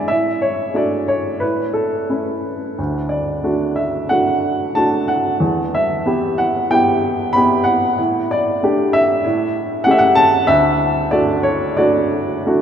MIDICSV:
0, 0, Header, 1, 2, 480
1, 0, Start_track
1, 0, Key_signature, 2, "major"
1, 0, Tempo, 665927
1, 68, Time_signature, 4, 2, 24, 8
1, 3429, Tempo, 647249
1, 5349, Tempo, 628272
1, 8229, Tempo, 677966
1, 9292, End_track
2, 0, Start_track
2, 0, Title_t, "Upright piano"
2, 0, Program_c, 0, 0
2, 0, Control_c, 0, 64, 127
2, 0, Note_on_c, 0, 56, 39
2, 0, Note_on_c, 0, 62, 34
2, 0, Note_on_c, 0, 64, 42
2, 0, Note_on_c, 0, 74, 75
2, 0, Note_on_c, 0, 76, 75
2, 0, Note_on_c, 0, 80, 72
2, 57, Note_off_c, 0, 76, 0
2, 57, Note_on_c, 0, 76, 67
2, 63, Note_on_c, 0, 45, 44
2, 76, Control_c, 0, 64, 0
2, 79, Note_off_c, 0, 56, 0
2, 80, Note_off_c, 0, 62, 0
2, 80, Note_off_c, 0, 74, 0
2, 82, Note_off_c, 0, 64, 0
2, 84, Note_off_c, 0, 80, 0
2, 193, Control_c, 0, 64, 127
2, 300, Note_on_c, 0, 73, 59
2, 307, Note_off_c, 0, 76, 0
2, 532, Note_on_c, 0, 57, 34
2, 534, Note_on_c, 0, 62, 30
2, 536, Note_on_c, 0, 66, 36
2, 549, Note_off_c, 0, 73, 0
2, 549, Note_on_c, 0, 74, 60
2, 779, Note_on_c, 0, 73, 57
2, 794, Note_off_c, 0, 74, 0
2, 995, Note_off_c, 0, 45, 0
2, 1005, Note_off_c, 0, 57, 0
2, 1006, Note_off_c, 0, 62, 0
2, 1007, Note_off_c, 0, 66, 0
2, 1009, Note_on_c, 0, 71, 56
2, 1017, Note_on_c, 0, 45, 43
2, 1030, Note_off_c, 0, 73, 0
2, 1035, Control_c, 0, 64, 0
2, 1149, Control_c, 0, 64, 127
2, 1250, Note_on_c, 0, 69, 61
2, 1268, Note_off_c, 0, 71, 0
2, 1510, Note_on_c, 0, 61, 28
2, 1511, Note_on_c, 0, 57, 29
2, 1514, Note_on_c, 0, 64, 33
2, 1726, Note_off_c, 0, 69, 0
2, 1974, Note_off_c, 0, 45, 0
2, 1989, Note_off_c, 0, 57, 0
2, 1989, Note_off_c, 0, 61, 0
2, 1991, Note_off_c, 0, 64, 0
2, 2007, Note_on_c, 0, 38, 41
2, 2017, Control_c, 0, 64, 0
2, 2132, Control_c, 0, 64, 127
2, 2228, Note_on_c, 0, 74, 53
2, 2477, Note_on_c, 0, 57, 33
2, 2480, Note_on_c, 0, 62, 32
2, 2483, Note_on_c, 0, 66, 37
2, 2709, Note_on_c, 0, 76, 54
2, 2726, Note_off_c, 0, 74, 0
2, 2941, Note_off_c, 0, 57, 0
2, 2943, Note_off_c, 0, 62, 0
2, 2944, Note_off_c, 0, 66, 0
2, 2950, Note_on_c, 0, 78, 67
2, 2960, Note_off_c, 0, 76, 0
2, 2960, Note_on_c, 0, 57, 35
2, 2961, Note_on_c, 0, 62, 34
2, 2967, Note_on_c, 0, 66, 36
2, 3398, Note_off_c, 0, 78, 0
2, 3417, Note_off_c, 0, 57, 0
2, 3418, Note_off_c, 0, 62, 0
2, 3421, Note_off_c, 0, 66, 0
2, 3424, Note_on_c, 0, 81, 70
2, 3430, Note_on_c, 0, 57, 38
2, 3435, Note_on_c, 0, 62, 35
2, 3436, Note_on_c, 0, 66, 38
2, 3668, Note_on_c, 0, 78, 61
2, 3675, Note_off_c, 0, 81, 0
2, 3880, Note_off_c, 0, 38, 0
2, 3892, Note_off_c, 0, 78, 0
2, 3895, Note_off_c, 0, 57, 0
2, 3898, Note_off_c, 0, 62, 0
2, 3898, Note_off_c, 0, 66, 0
2, 3907, Note_on_c, 0, 40, 51
2, 3918, Control_c, 0, 64, 0
2, 4054, Control_c, 0, 64, 127
2, 4162, Note_on_c, 0, 76, 70
2, 4393, Note_on_c, 0, 59, 40
2, 4396, Note_on_c, 0, 64, 36
2, 4399, Note_on_c, 0, 67, 44
2, 4633, Note_on_c, 0, 78, 66
2, 4655, Note_off_c, 0, 76, 0
2, 4862, Note_off_c, 0, 59, 0
2, 4864, Note_off_c, 0, 64, 0
2, 4866, Note_off_c, 0, 67, 0
2, 4875, Note_on_c, 0, 79, 82
2, 4877, Note_on_c, 0, 59, 39
2, 4882, Note_on_c, 0, 64, 37
2, 4883, Note_off_c, 0, 78, 0
2, 4885, Note_on_c, 0, 67, 43
2, 5335, Note_on_c, 0, 83, 80
2, 5338, Note_off_c, 0, 59, 0
2, 5341, Note_off_c, 0, 64, 0
2, 5342, Note_off_c, 0, 67, 0
2, 5358, Note_on_c, 0, 59, 45
2, 5360, Note_on_c, 0, 64, 39
2, 5363, Note_on_c, 0, 67, 48
2, 5366, Note_off_c, 0, 79, 0
2, 5567, Note_off_c, 0, 83, 0
2, 5571, Note_on_c, 0, 78, 71
2, 5804, Note_off_c, 0, 40, 0
2, 5807, Note_off_c, 0, 78, 0
2, 5825, Note_off_c, 0, 59, 0
2, 5826, Note_off_c, 0, 64, 0
2, 5827, Note_off_c, 0, 67, 0
2, 5835, Note_on_c, 0, 45, 59
2, 5846, Control_c, 0, 64, 0
2, 5978, Control_c, 0, 64, 127
2, 6086, Note_on_c, 0, 74, 69
2, 6330, Note_on_c, 0, 57, 43
2, 6332, Note_on_c, 0, 62, 42
2, 6334, Note_on_c, 0, 67, 51
2, 6535, Note_off_c, 0, 74, 0
2, 6561, Note_on_c, 0, 76, 78
2, 6767, Note_off_c, 0, 45, 0
2, 6786, Note_off_c, 0, 57, 0
2, 6787, Note_off_c, 0, 62, 0
2, 6788, Note_off_c, 0, 67, 0
2, 6800, Note_on_c, 0, 45, 62
2, 6807, Control_c, 0, 64, 0
2, 6954, Control_c, 0, 64, 127
2, 7255, Note_on_c, 0, 78, 80
2, 7273, Note_on_c, 0, 57, 44
2, 7274, Note_on_c, 0, 61, 43
2, 7274, Note_on_c, 0, 67, 51
2, 7288, Note_off_c, 0, 76, 0
2, 7308, Note_on_c, 0, 76, 69
2, 7314, Note_off_c, 0, 78, 0
2, 7364, Note_off_c, 0, 76, 0
2, 7364, Note_on_c, 0, 78, 82
2, 7494, Note_on_c, 0, 81, 93
2, 7509, Note_off_c, 0, 78, 0
2, 7719, Note_off_c, 0, 45, 0
2, 7722, Note_off_c, 0, 81, 0
2, 7734, Note_off_c, 0, 57, 0
2, 7735, Note_off_c, 0, 61, 0
2, 7735, Note_off_c, 0, 67, 0
2, 7737, Note_on_c, 0, 76, 86
2, 7744, Note_on_c, 0, 38, 60
2, 7756, Control_c, 0, 64, 0
2, 7880, Control_c, 0, 64, 127
2, 8225, Note_on_c, 0, 74, 76
2, 8231, Note_on_c, 0, 57, 44
2, 8233, Note_on_c, 0, 62, 40
2, 8238, Note_on_c, 0, 66, 48
2, 8242, Note_off_c, 0, 76, 0
2, 8453, Note_on_c, 0, 73, 71
2, 8468, Note_off_c, 0, 74, 0
2, 8685, Note_off_c, 0, 57, 0
2, 8686, Note_off_c, 0, 62, 0
2, 8689, Note_off_c, 0, 66, 0
2, 8690, Note_on_c, 0, 74, 71
2, 8697, Note_on_c, 0, 57, 46
2, 8700, Note_on_c, 0, 62, 42
2, 8700, Note_on_c, 0, 66, 52
2, 8702, Note_off_c, 0, 73, 0
2, 9172, Note_off_c, 0, 57, 0
2, 9173, Note_off_c, 0, 62, 0
2, 9173, Note_off_c, 0, 66, 0
2, 9184, Note_on_c, 0, 57, 46
2, 9188, Note_on_c, 0, 62, 42
2, 9189, Note_on_c, 0, 66, 49
2, 9292, Note_off_c, 0, 38, 0
2, 9292, Note_off_c, 0, 57, 0
2, 9292, Note_off_c, 0, 62, 0
2, 9292, Note_off_c, 0, 66, 0
2, 9292, Note_off_c, 0, 74, 0
2, 9292, End_track
0, 0, End_of_file